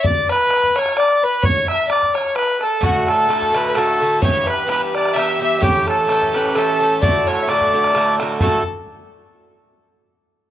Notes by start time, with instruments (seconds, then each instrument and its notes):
0.03 fiddle D5, accordion D5, bodhran
0.29 fiddle B4, accordion B4, bodhran
0.51 bodhran
0.63 bodhran
0.75 fiddle C#5, accordion C#5, bodhran
0.86 bodhran
0.97 fiddle D5, accordion D5, bodhran
1.24 accordion B4, fiddle B4
1.43 fiddle C#5, accordion C#5, bodhran
1.67 fiddle E5, accordion E5, bodhran
1.88 fiddle D5, accordion D5, bodhran
2.03 bodhran
2.14 fiddle C#5, accordion C#5, bodhran
2.35 fiddle B4, accordion B4, bodhran
2.61 fiddle A4, accordion A4, bodhran
2.81 bouzouki A2 D3 A3 F#4, accordion F#4, fiddle F#4, bodhran
3.08 accordion A4, fiddle A4, bodhran
3.28 bouzouki A2 D3 A3 F#4, bodhran
3.42 bodhran
3.53 bouzouki A2 D3 A3 F#4, accordion B4, bodhran
3.65 fiddle B4, bodhran
3.74 bouzouki A2 D3 A3 F#4, fiddle A4, accordion A4, bodhran
4.01 bouzouki A2 D3 A3 F#4
4.22 bouzouki G2 E3 B3 G4, fiddle C#5, accordion C#5, bodhran
4.46 fiddle B4, accordion B4, bodhran
4.67 bouzouki G2 E3 B3 G4, fiddle B4, accordion B4, bodhran
4.94 fiddle D5, accordion D5, bodhran
5.06 bodhran
5.14 bouzouki G2 E3 B3 G4, fiddle E5, bodhran
5.18 accordion E5
5.39 bouzouki G2 E3 B3 G4, fiddle E5, accordion E5
5.60 bouzouki A2 E3 C#4 G4, fiddle G4, accordion G4, bodhran
5.86 fiddle A4, accordion A4, bodhran
6.07 bouzouki A2 E3 C#4 G4, bodhran
6.22 bodhran
6.33 bouzouki A2 E3 C#4 G4, accordion B4, bodhran
6.46 bodhran
6.54 bouzouki A2 E3 C#4 G4, fiddle A4, accordion A4, bodhran
6.79 bouzouki A2 E3 C#4
6.83 bouzouki G4
7.02 bouzouki A2 D3 A3 F#4, accordion D5, fiddle D5, bodhran
7.26 fiddle C#5, accordion C#5, bodhran
7.43 fiddle E5
7.47 bouzouki A2 D3 A3 F#4, fiddle D5, accordion D5, bodhran
7.61 bodhran
7.73 bouzouki A2 D3 A3 F#4
7.84 bodhran
7.93 bouzouki A2 D3 A3, bodhran
7.97 bouzouki F#4
8.19 bouzouki A2 D3 A3 F#4, bodhran
8.40 bouzouki A2 D3 A3 F#4, accordion A4, fiddle A4, bodhran